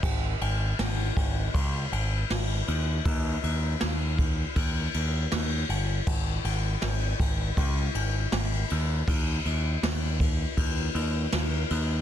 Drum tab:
CC |x-------|--------|x-------|--------|
RD |-xxxxxxx|xxxxxxxx|-xxxxxxx|xxxxxxxx|
SD |--o---o-|--o---o-|--o---o-|--o---o-|
BD |o--oo---|o--oo---|o--oo---|o--oo---|